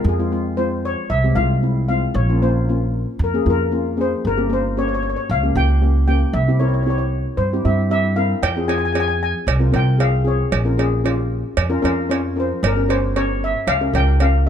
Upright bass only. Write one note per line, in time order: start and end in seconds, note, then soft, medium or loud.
0.04 0.94 F2 loud
1.10 1.33 C2 medium
1.36 2.03 C2 medium
2.14 3.04 A#1 loud
3.19 3.42 F2 medium
3.46 4.13 F2 medium
4.25 5.14 G1 medium
5.30 5.52 C#2 medium
5.55 6.22 C#2 medium
6.33 7.23 C2 medium
7.37 7.61 G2 medium
7.65 8.32 G2 medium
8.43 9.32 F2 loud
9.47 9.70 C2 medium
9.74 10.41 C2 medium
10.52 11.42 A#1 medium
11.57 11.80 F2 medium
11.84 12.51 F2 medium
12.63 13.52 G1 medium
13.67 13.90 C#2 medium
13.94 14.49 C#2 medium